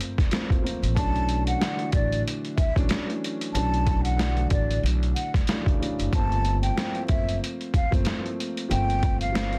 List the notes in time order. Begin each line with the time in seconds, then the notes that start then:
Already playing: F3 A3 A#3 C4
0.01 closed hi-hat
0.18 kick, snare, closed hi-hat
0.31 F3 A3 A#3 C4, snare, closed hi-hat
0.50 kick, closed hi-hat
0.62 F3 A3 A#3 C4
0.67 closed hi-hat
0.83 A1, closed hi-hat
0.95 B1 E3 F#3 A3 C#4 D4 A5, kick, closed hi-hat
1.16 closed hi-hat
1.29 closed hi-hat
1.47 F#5, closed hi-hat
1.59 D3 E3 F#3 A3 D4, snare, closed hi-hat
1.79 closed hi-hat
1.92 A1 D5, kick, closed hi-hat
2.12 closed hi-hat
2.28 closed hi-hat
2.45 closed hi-hat
2.57 E5, kick, closed hi-hat
2.75 B1 E3 F#3 A3 C#4 D4, kick, closed hi-hat
2.89 snare, closed hi-hat
3.10 closed hi-hat
3.24 closed hi-hat
3.41 closed hi-hat
3.53 B1 E3 F#3 A3 C#4 D4 A5, closed hi-hat
3.74 closed hi-hat
3.87 kick, closed hi-hat
4.04 F#5, closed hi-hat
4.17 D3 E3 F#3 A3 D4, snare, closed hi-hat
4.37 closed hi-hat
4.50 A1 D5, kick, closed hi-hat
4.71 closed hi-hat
4.83 B1, closed hi-hat
5.03 closed hi-hat
5.15 F#5, closed hi-hat
5.34 kick, snare, closed hi-hat
5.47 C#3 E3 F#3 A3, snare, closed hi-hat
5.51 D4
5.66 kick, closed hi-hat
5.79 C#3 E3 F#3 A3 D4, closed hi-hat
5.99 F#1, closed hi-hat
6.13 G1 F3 A3 A#3 C4 A5, kick, closed hi-hat
6.32 closed hi-hat
6.45 closed hi-hat
6.62 G5, closed hi-hat
6.77 F3 A3 A#3 C4, snare, closed hi-hat
6.95 closed hi-hat
7.08 F#1 E5, kick, closed hi-hat
7.29 closed hi-hat
7.44 closed hi-hat
7.61 closed hi-hat
7.74 F5, kick, closed hi-hat
7.91 G1 F3 A3 A#3 C4, kick, closed hi-hat
8.05 snare, closed hi-hat
8.26 closed hi-hat
8.40 closed hi-hat
8.57 closed hi-hat
8.69 G1 F3 A3 A#3 C4 G5, closed hi-hat
8.90 closed hi-hat
9.03 kick, closed hi-hat
9.21 F5, closed hi-hat
9.32 F3 A3 A#3 C4, snare
9.36 closed hi-hat
9.53 closed hi-hat